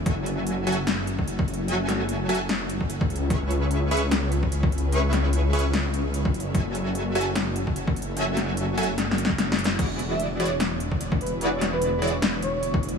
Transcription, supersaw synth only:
X:1
M:4/4
L:1/8
Q:"Swing 16ths" 1/4=148
K:F#m
V:1 name="Supersaw synth"
[F,FAeg]3 [F,FAeg] z4 | [F,FAeg]3 [F,FAeg] z4 | [CGBec']3 [CGBec'] z4 | [CGBec']3 [CGBec'] z4 |
[F,FAeg]3 [F,FAeg] z4 | [F,FAeg]3 [F,FAeg] z4 | [E,EFGd]3 [E,EFGd] z4 | [E,EFGd]3 [E,EFGd] z4 |]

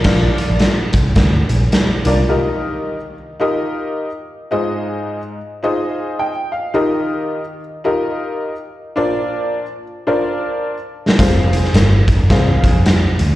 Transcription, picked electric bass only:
X:1
M:4/4
L:1/16
Q:"Swing" 1/4=108
K:Eb
V:1 name="Picked electric bass" clef=bass
B,,,2 z B,,, z2 C,,2 D,,2 B,,,2 z2 C,,2 | z16 | z16 | z16 |
z16 | F,,,4 G,,,2 F,,,2 C,,2 F,,4 D,,2 |]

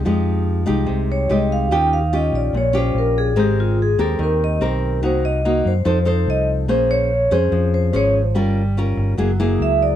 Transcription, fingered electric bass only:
X:1
M:4/4
L:1/8
Q:1/4=145
K:Fm
V:1 name="Fingered electric bass" clef=bass
F,,3 C,, C,,2 C,,2 | E,,3 B,,, B,,,2 B,,,2 | A,,,3 E,, E,,2 =B,,,2 | C,,3 _G,, F,,2 C,,2 |
B,,,3 F,, F,,2 A,,,2 | G,,,3 G,,, _G,,,2 D,,2 |]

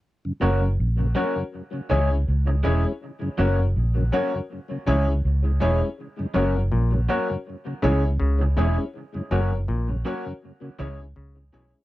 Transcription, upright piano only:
X:1
M:4/4
L:1/16
Q:"Swing 16ths" 1/4=81
K:F#mix
V:1 name="Upright piano"
z2 [CFAc] z3 [CFAc] z3 [CEGc] z3 [CEGc] [Gc] | z2 [CFAc] z3 [CFAc] z3 [CEGc] z3 [CEGc] [Gc] | z2 [CFAc] z3 [CFAc] z3 [CEGc] z3 [CEGc] [Gc] | z2 [CFAc] z3 [CFAc] z3 [CEGc] z3 [CEGc] [Gc] |]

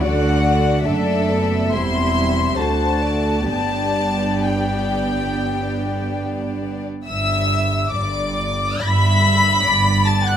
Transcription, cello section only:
X:1
M:4/4
L:1/16
Q:1/4=68
K:G
V:1 name="Cello section" clef=bass
D,4 F,,4 E,,4 D,,4 | G,,12- G,,3 z | G,,4 G,,4 G,,4 G,,4 |]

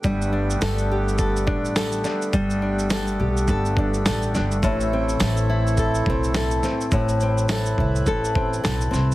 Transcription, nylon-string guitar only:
X:1
M:4/4
L:1/8
Q:"Swing 16ths" 1/4=105
K:G
V:1 name="Nylon-string guitar"
G, D A G A D A D | G, D A G A D A D | A,, C A E A C A C | A,, C A E A C A C |]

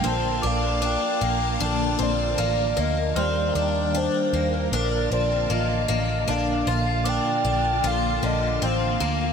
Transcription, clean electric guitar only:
X:1
M:4/4
L:1/8
Q:1/4=77
K:Bb
V:1 name="Clean electric guitar"
[B,,D,F,B,DA] [F,B,DA]3 [D,F,B,A]4 | [E,G,B,DG]4 [D,F,B,]4 | [B,,D,F,B,DA]3 [F,B,DA] [D,F,B,A]4 |]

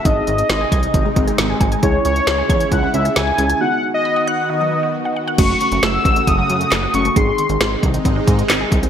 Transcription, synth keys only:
X:1
M:4/4
L:1/8
Q:1/4=135
K:F#dor
V:1 name="Synth keys"
[^B,DG]8 | [CEG]6- [CEG] [CEG] | [B,DF]8 | [A,CF]6- [A,CF] [A,CF] |
[^B,DG]8 |]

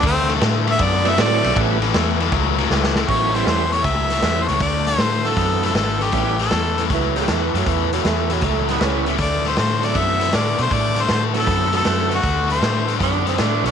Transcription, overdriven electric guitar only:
X:1
M:4/4
L:1/8
Q:"Swing" 1/4=157
K:D
V:1 name="Overdriven electric guitar" clef=bass
[D,A,] [D,A,] [D,A,] [D,A,] [D,B,] [D,B,] [D,A,] [D,A,] | [A,,E,] [A,,E,] [A,,E,] [A,,E,] [A,,F,] [A,,F,] [A,,E,] [A,,E,] | [A,,E,] [A,,E,] [A,,E,] [A,,E,] [A,,F,] [A,,F,] [A,,E,] [A,,E,] | [D,A,] [D,A,] [D,A,] [D,A,] [D,B,] [D,B,] [D,A,] [D,A,] |
[A,,E,] [A,,E,] [A,,E,] [A,,E,] [A,,F,] [A,,F,] [A,,E,] [A,,E,] | [A,,E,] [A,,E,] [A,,E,] [A,,E,] [A,,F,] [A,,F,] [A,,E,] [A,,E,] | [D,A,] [D,A,] [D,A,] [D,A,] [D,B,] [D,B,] [D,A,] [D,A,] | [D,A,] [D,A,] [D,A,] [D,A,] [D,B,] [D,B,] [D,A,] [D,A,] |
[D,A,] [D,A,] [D,A,] [D,A,] [D,B,] [D,B,] [D,A,] [D,A,] |]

